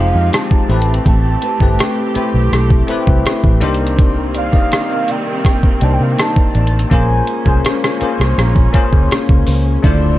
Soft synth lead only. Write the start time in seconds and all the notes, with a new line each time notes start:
Already playing: F5
0.35 A5
1.08 A5
4.38 F5
5.11 G5
5.84 A5
5.93 G5
6.03 F5
6.12 G5
6.21 A5
6.93 G#5
9.87 D5